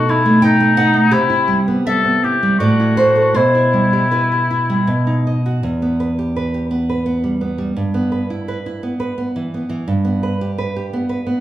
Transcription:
Already playing: B2 F#4 A4 A5
0.09 D#4 E4
0.26 A3
0.42 D#4 G5
0.60 A3
0.77 D#4 F#5
0.94 A3
1.11 C3 E4 G4
1.30 E4
1.48 G3
1.68 B3
1.86 G3 A4 E5
2.05 B3
2.23 E4 G4
2.43 G3
2.59 A2 F#4 D5
2.80 E4
2.97 A3 C5
3.16 A4
3.34 B2 E4 C5
3.55 E4
3.74 G3
3.93 G4
4.11 E4 B4
4.32 G4
4.51 E4
4.70 G3
4.87 B2
5.07 D#4
5.27 D#5
5.46 F#4
5.63 E2
5.82 B3
6.00 B4
6.19 G4
6.36 B4
6.54 G4
6.71 B3
6.89 B4
7.06 B3
7.24 G3
7.41 B3
7.58 G3
7.76 G2
7.94 B3
8.12 B4
8.30 E4
8.48 B4
8.66 E4
8.83 B3
9.00 B4
9.18 B3
9.36 E3
9.54 B3
9.69 E3
9.88 G2
10.05 B3
10.23 B4
10.41 G4
10.58 B4
10.76 G4
10.93 B3
11.09 B4
11.27 B3

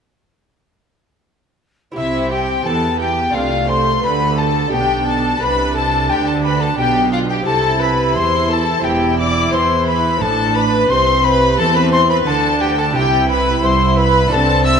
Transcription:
1.92 E4 G4
1.96 C2 C3 C4 E5
2.30 G4 G5
2.64 E2 E3 B3 A4 A5
2.99 G4 G5
3.30 A3 D4 F4 A4
3.35 C2 C3 F5
3.68 C5 C6
4.01 D2 D3 B4 B5
4.36 A4 A5
4.68 D4 G4
4.72 B1 B2 D4 G5
5.05 A4 A5
5.40 C2 C3 D4 B4 B5
5.75 A4 A5
6.09 D2 D3 G4 G5
6.27 A4 A5
6.43 B4 B5
6.60 A4 A5
6.77 B1 B2 G4 G5
7.12 F4 F5
7.29 G4 G5
7.42 C2 C4 E4 G4 A4
7.46 C3 E4 A5
7.80 B4 B5
8.14 E2 E3 C5 C6
8.49 A4 A5
8.80 C4 E4 G4
8.84 E1 E2 E4 G5
9.18 D5 D6
9.53 E2 E3 C5 C6
9.87 B4 B5
10.17 C4 D4 E4 A4
10.21 A1 A2 A5
10.56 B4 B5
10.89 C2 C3 C4 C5 C6
11.24 B4 B5
11.58 E2 E3 C4 A4 A5
11.75 B4 B5
11.92 C5 C6
12.09 B4 B5
12.26 D2 D3 D4 A4 A5
12.60 G4 G5
12.77 A4 A5
12.90 A3 E4
12.94 C2 C3 E4 G4 G5
13.29 B4 B5
13.63 C2 C5 C6
13.97 B4 B5
14.27 A3 D4 F#4
14.31 C2 C3 C4 A4 A5
14.65 E5 E6

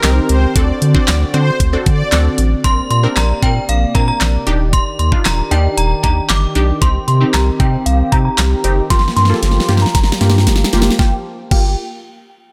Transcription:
Already playing: D#3 C4 G4
0.03 C2 C4 D#4 G4 A#4, snare, clap, closed hi-hat
0.29 C#2 C5, closed hi-hat
0.56 D2 D3 C4 D4 F#4 A4 D5, kick, closed hi-hat
0.82 D3, closed hi-hat
0.95 C4 D4 F#4 C5 D5, kick
1.08 D2, snare, clap, closed hi-hat
1.34 D3 C4 D4 F#4 C5, closed hi-hat
1.60 D2, kick, closed hi-hat
1.73 C4 D4 F#4 A4
1.86 D3 D5, kick, closed hi-hat
2.12 D2 C4 D4 F#4 A4, snare, clap, closed hi-hat
2.38 A1, closed hi-hat
2.64 A#1 C3 A#3 C4 D4 A#4 D5 C6, kick, closed hi-hat
2.90 A#2 C6, closed hi-hat
3.03 C4 D4 A#4
3.16 A#1 A#5, snare, clap, closed hi-hat
3.42 A#2 C4 D4 A#4 G5, kick, closed hi-hat
3.69 A#1 F5, closed hi-hat
3.94 A#2 C4 D4 A#4 A#5, kick, closed hi-hat
4.08 A#5
4.21 A#1, snare, clap, closed hi-hat
4.47 D#1 D#3 D4 D#4 G4, closed hi-hat
4.73 C6, kick, closed hi-hat
4.99 D#2 C6, closed hi-hat
5.12 D4 D#4 F4, kick
5.25 D#1 A#5, snare, clap, closed hi-hat
5.51 D#2 D4 D#4 G4 G5, closed hi-hat
5.77 D#1 A#5, closed hi-hat
6.03 D#2 D4 D#4 G4 A#5, kick, closed hi-hat
6.29 G1 D6, snare, clap, closed hi-hat
6.55 B1 D4 D#4 G4, closed hi-hat
6.81 C2 C4 D#4 G4 C6, kick, closed hi-hat
7.08 C3 C6, closed hi-hat
7.21 C4 D#4 G4
7.34 C2 A#5, snare, clap, closed hi-hat
7.60 C3 C4 D#4 G4 G5, kick, closed hi-hat
7.86 C2 F5, closed hi-hat
8.12 C3 C4 D#4 G4 A#5, kick, closed hi-hat
8.25 A#5
8.38 C2, snare, clap, closed hi-hat
8.64 F#1 C4 D#4 G4, closed hi-hat
8.90 G1 F3 A#3 F4 G4 C6, kick, snare, closed hi-hat
8.99 snare
9.08 snare
9.16 G2 C6, snare, closed hi-hat
9.25 snare
9.29 A#3 F4 A4
9.34 snare
9.43 G1, snare, closed hi-hat
9.51 snare
9.60 snare
9.68 G2 A#3 F4 G4, snare, closed hi-hat
9.77 snare
9.82 A#5
9.86 snare
9.95 G1 A#5, kick, snare, closed hi-hat
10.04 snare
10.12 snare
10.21 G2 A#3 F4 G4, snare, closed hi-hat
10.30 snare
10.38 snare
10.47 G1, snare, closed hi-hat
10.56 snare
10.64 snare
10.73 F#1 A#3 F4 G4, snare, closed hi-hat
10.82 snare
10.90 snare
10.99 G1 F3 A#3 F4 G4 G5, kick, snare
11.51 G1 A#3 F4 G4 G5, kick, crash

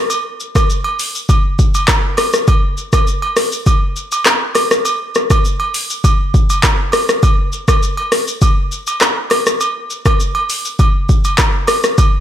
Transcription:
0.10 high agogo, shaker
0.40 shaker
0.55 kick, cross-stick, high agogo, shaker
0.70 shaker
0.84 high agogo
0.99 open hi-hat, shaker
1.15 shaker
1.29 kick, high agogo, shaker
1.59 kick, shaker
1.74 high agogo, shaker
1.88 kick, cross-stick, clap, low woodblock, shaker
2.17 cross-stick, open hi-hat, high agogo, shaker
2.33 cross-stick, shaker
2.48 kick, high agogo, shaker
2.78 shaker
2.93 kick, cross-stick, high agogo, shaker
3.07 shaker
3.22 high agogo
3.37 cross-stick, open hi-hat, shaker
3.52 shaker
3.66 kick, high agogo, shaker
3.96 shaker
4.12 high agogo, shaker
4.25 cross-stick, clap, low woodblock, shaker
4.55 cross-stick, open hi-hat, high agogo, shaker
4.71 cross-stick, shaker
4.85 high agogo, shaker
5.15 cross-stick, shaker
5.30 kick, cross-stick, high agogo, shaker
5.45 shaker
5.60 high agogo
5.74 open hi-hat, shaker
5.90 shaker
6.04 kick, high agogo, shaker
6.34 kick, shaker
6.50 high agogo, shaker
6.63 kick, cross-stick, clap, low woodblock, shaker
6.92 cross-stick, open hi-hat, high agogo, shaker
7.09 cross-stick, shaker
7.23 kick, high agogo, shaker
7.53 shaker
7.68 kick, cross-stick, high agogo, shaker
7.83 shaker
7.97 high agogo
8.12 cross-stick, open hi-hat, shaker
8.28 shaker
8.42 kick, high agogo, shaker
8.72 shaker
8.87 high agogo, shaker
9.01 cross-stick, clap, low woodblock, shaker
9.30 cross-stick, open hi-hat, high agogo, shaker
9.46 cross-stick, shaker
9.61 high agogo, shaker
9.90 shaker
10.05 kick, cross-stick, high agogo, shaker
10.20 shaker
10.35 high agogo
10.50 open hi-hat, shaker
10.65 shaker
10.79 kick, high agogo, shaker
11.09 kick, shaker
11.24 high agogo, shaker
11.38 kick, cross-stick, clap, low woodblock, shaker
11.67 cross-stick, open hi-hat, high agogo, shaker
11.84 cross-stick, shaker
11.98 kick, high agogo, shaker

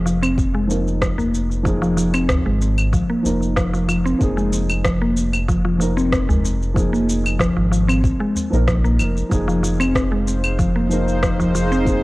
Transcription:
Already playing: F1 F3 A#3 D#4 G#4
0.06 F3, shaker
0.23 C4, claves, shaker
0.38 kick, shaker
0.55 G#3
0.67 F3 A#3 D#4, shaker
0.71 A#4
0.88 shaker
1.02 F3, kick, cross-stick, shaker
1.18 A#3, udu, shaker
1.34 shaker
1.51 shaker
1.63 F3 A#3 D#4 G#4, kick, shaker
1.82 F3, shaker
1.97 F3, shaker
2.14 C4, claves, shaker
2.29 kick, cross-stick, udu, shaker
2.46 G#1 G#3
2.62 shaker
2.78 claves, shaker
2.93 F3, kick, shaker
3.10 A#3
3.23 F1 F3 A#3 D#4 A#4, udu, shaker
3.42 shaker
3.56 F3, kick, cross-stick, shaker
3.73 F3, shaker
3.89 F3, claves, shaker
4.06 C4, shaker
4.19 F1 F3 A#3 D#4, kick, shaker
4.23 G#4
4.37 G#3, shaker
4.53 shaker
4.70 claves, shaker
4.84 F3, kick, cross-stick, shaker
5.02 A#3
5.17 shaker
5.33 claves, shaker
5.48 F3, kick, shaker
5.65 F3
5.78 F3 A#3 D#4, shaker
5.82 A#4
5.97 C4, shaker
6.12 kick, cross-stick, shaker
6.29 G#3, udu, shaker
6.45 shaker
6.62 shaker
6.74 F3 A#3 D#4 G#4, kick, shaker
6.93 A#3, shaker
7.09 shaker
7.26 claves, shaker
7.39 F3, kick, cross-stick, udu, shaker
7.57 G#1 F3
7.72 F3, shaker
7.88 C4, claves, shaker
8.04 kick, shaker
8.20 G#3
8.35 udu, shaker
8.50 A#1 F3 A#3 D#4, shaker
8.54 A#4
8.67 F3, kick, cross-stick, shaker
8.84 A#3, shaker
8.99 F1, claves, shaker
9.17 shaker
9.29 F1 F3 A#3 D#4 G#4 C5 F5, kick, shaker
9.33 G#4
9.48 F3, shaker
9.63 F3, shaker
9.80 C4, claves, shaker
9.95 kick, cross-stick, shaker
10.12 G#3
10.28 shaker
10.44 claves, shaker
10.59 F3, kick, shaker
10.76 A#3
10.89 F3 A#3 D#4, shaker
10.93 A#4
11.08 shaker
11.23 F3, kick, cross-stick, shaker
11.40 F3, udu, shaker
11.55 F3, shaker
11.72 C4, shaker
11.84 F3 A#3 D#4 G#4, kick, shaker

